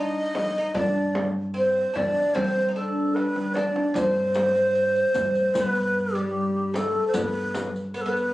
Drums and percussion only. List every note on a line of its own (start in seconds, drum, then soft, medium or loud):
0.35 tombak tek medium
0.35 frame drum medium
0.74 tombak dum medium
0.74 frame drum medium
1.15 tombak tek medium
1.15 frame drum medium
1.55 tombak ka soft
1.96 frame drum medium
1.96 tombak dum medium
2.35 tombak dum medium
2.35 frame drum medium
3.16 tombak tek soft
3.36 tombak ka medium
3.55 tombak tek medium
3.55 frame drum medium
3.76 tombak ka medium
3.95 riq medium
3.95 frame drum medium
3.95 tombak dum loud
4.34 riq soft
4.34 tombak tek medium
4.34 frame drum medium
4.55 riq soft
4.75 riq soft
4.95 riq soft
5.14 riq medium
5.14 tombak dum medium
5.14 frame drum medium
5.35 riq soft
5.55 riq medium
5.55 frame drum medium
5.55 tombak dum medium
5.75 riq soft
5.75 tombak ka soft
5.96 tombak ka soft
6.16 riq soft
6.16 tombak ka soft
6.74 riq soft
6.74 tombak tek medium
6.74 frame drum medium
7.14 riq medium
7.14 frame drum medium
7.14 tombak dum loud
7.55 riq soft
7.55 tombak tek medium
7.55 frame drum medium
7.76 riq soft
7.96 riq soft
8.17 riq soft